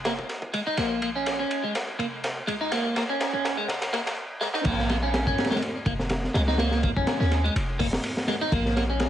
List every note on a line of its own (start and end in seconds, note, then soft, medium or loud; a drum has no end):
0.00 0.23 F1 medium
0.05 0.12 A#3 medium
0.05 snare loud
0.05 ride medium
0.19 kick medium
0.29 snare soft
0.29 ride medium
0.42 kick medium
0.54 0.60 G#3 medium
0.54 ride medium
0.67 0.77 D#4 loud
0.77 1.44 A#1 loud
0.77 1.01 A#3 loud
0.77 snare soft
0.77 ride medium
1.02 1.09 A#3 medium
1.02 ride medium
1.16 1.38 C#4 medium
1.26 snare medium
1.26 ride medium
1.39 1.62 C#4 medium
1.51 ride medium
1.64 1.73 G#3 medium
1.75 snare medium
1.75 ride loud
1.99 2.41 F1 loud
1.99 2.06 A#3 medium
1.99 ride medium
2.24 snare medium
2.24 ride medium
2.47 3.02 C#2 medium
2.47 2.54 G#3 medium
2.47 ride medium
2.61 2.71 D#4 loud
2.72 2.95 A#3 loud
2.72 snare medium
2.72 ride medium
2.96 3.03 A#3 medium
2.96 snare medium
2.96 ride medium
3.09 3.32 C#4 medium
3.21 snare medium
3.21 ride medium
3.33 3.62 D#2 medium
3.33 3.56 C#4 medium
3.45 snare medium
3.45 ride medium
3.57 3.66 G#3 medium
3.68 4.11 F1 medium
3.68 snare medium
3.68 ride medium
3.82 snare medium
3.82 ride medium
3.93 3.99 A#3 medium
3.93 snare medium
3.93 ride medium
4.06 snare medium
4.06 ride medium
4.41 4.47 G#3 medium
4.41 snare medium
4.54 4.64 D#4 loud
4.54 snare medium
4.65 5.32 A#1 loud
4.65 4.88 A#3 loud
4.65 kick loud
4.65 crash medium
4.65 ride medium
4.79 snare soft
4.89 4.96 A#3 medium
4.89 snare medium
4.89 ride medium
5.03 5.26 C#4 medium
5.14 snare loud
5.14 ride medium
5.27 5.50 C#4 medium
5.27 kick medium
5.38 snare medium
5.38 ride medium
5.44 snare medium
5.44 ride medium
5.51 5.60 G#3 medium
5.51 snare loud
5.51 ride medium
5.56 snare medium
5.56 ride medium
5.62 ride medium
5.86 6.28 F1 loud
5.86 5.93 A#3 medium
5.86 kick loud
5.86 ride medium
5.99 snare medium
6.09 snare loud
6.09 ride medium
6.24 snare soft
6.34 6.89 C#2 medium
6.34 6.41 G#3 medium
6.34 snare loud
6.34 ride medium
6.48 6.58 D#4 loud
6.48 snare medium
6.58 6.82 A#3 loud
6.58 snare loud
6.58 ride medium
6.71 snare medium
6.83 6.90 A#3 medium
6.83 kick medium
6.83 ride medium
6.96 7.19 C#4 medium
6.96 kick medium
7.07 snare loud
7.07 ride medium
7.20 7.50 D#2 medium
7.20 7.43 C#4 medium
7.20 snare soft
7.31 snare soft
7.31 ride medium
7.44 7.53 G#3 medium
7.44 ride soft
7.56 7.98 F1 medium
7.56 ride medium
7.79 7.86 A#3 medium
7.79 kick medium
7.79 open hi-hat medium
7.93 snare loud
8.03 ride medium
8.17 snare medium
8.28 8.35 G#3 medium
8.28 snare medium
8.28 ride medium
8.41 8.51 D#4 loud
8.52 9.09 A#1 loud
8.52 8.75 A#3 loud
8.52 kick loud
8.52 ride medium
8.66 snare soft
8.76 8.83 A#3 medium
8.76 snare medium
8.76 ride medium
8.90 9.09 C#4 medium
9.00 snare loud
9.00 ride medium